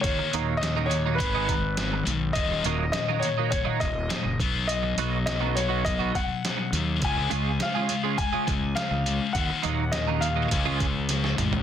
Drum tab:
HH |x-x-x-x-x-x-x-x-|x-x-x-x-x-x-x-x-|x-x-x-x-x-x-x-x-|x-x-x-x-x-x-x-x-|
SD |----o-------o---|----o-------o---|----o-------o---|----o-------o---|
T2 |----------------|----------------|----------------|----------------|
FT |----------------|----------------|----------------|----------------|
BD |o-------o-o-----|o-------o-o---o-|--------o-o-----|o-------o-o-----|

HH |x-x-x-x-x-x-x-x-|
SD |----o-------oo--|
T2 |--------------o-|
FT |---------------o|
BD |o-------o-o-----|